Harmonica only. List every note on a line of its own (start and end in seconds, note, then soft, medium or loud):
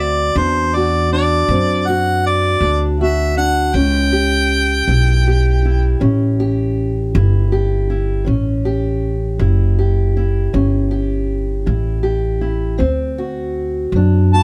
0.01 0.39 D5 medium
0.37 0.77 C5 medium
0.75 1.12 D5 medium
1.13 1.89 D5 medium
1.88 2.25 F#5 medium
2.27 2.84 D5 medium
3.01 3.36 E5 medium
3.38 3.77 F#5 medium
3.76 6.02 G5 loud
14.34 14.43 A5 medium